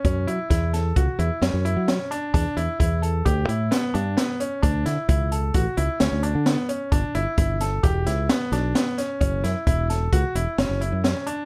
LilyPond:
<<
  \new Staff \with { instrumentName = "Grand piano" } { \time 5/4 \key fis \phrygian \tempo 4 = 131 cis'8 e'8 e'8 a'8 fis'8 e'8 cis'8 e'8 cis'8 d'8 | d'8 e'8 e'8 a'8 g'8 e'8 b8 d'8 b8 cis'8 | d'8 e'8 e'8 a'8 fis'8 e'8 cis'8 d'8 b8 cis'8 | d'8 e'8 e'8 a'8 g'8 e'8 b8 d'8 b8 cis'8 |
cis'8 e'8 e'8 a'8 fis'8 e'8 cis'8 e'8 cis'8 d'8 | }
  \new Staff \with { instrumentName = "Fingered electric bass" } { \clef bass \time 5/4 \key fis \phrygian fis,8 fis16 r16 e,4 cis,16 r16 e,16 r16 fis,16 fis,8 fis8 r8. | e,16 r16 e,16 r16 e,4 d,8 a,8 r8 g,8 r4 | d,8 d16 r16 cis,4 a,,16 r16 cis,16 r16 d,16 d,8 d8 r8. | g,,16 r16 g,,16 r16 g,,4 e,,8 cis,8 r8 b,,8 r4 |
fis,,8 fis,16 r16 e,,4 cis,16 r16 e,,16 r16 fis,,16 fis,,8 fis,8 r8. | }
  \new DrumStaff \with { instrumentName = "Drums" } \drummode { \time 5/4 <hh bd>8 hh8 <hh bd sn>8 <hh sn>8 <hh bd>8 hh8 <hh sn>8 hh8 <hh sn>8 hh8 | <hh bd>8 hh8 <hh bd>8 hh8 <hh bd>8 hh8 <hh sn>8 hh8 <hh sn>8 hh8 | <hh bd>8 <hh sn>8 <hh bd>8 hh8 <hh bd>8 hh8 <hh sn>8 hh8 <hh sn>8 hh8 | <hh bd>8 hh8 <hh bd>8 <hh sn>8 <hh bd>8 <hh sn>8 <hh sn>8 <hh sn>8 <hh sn>8 <hh sn>8 |
<hh bd>8 <hh sn>8 <hh bd>8 <hh sn>8 <hh bd>8 hh8 <hh sn>8 hh8 <hh sn>8 hh8 | }
>>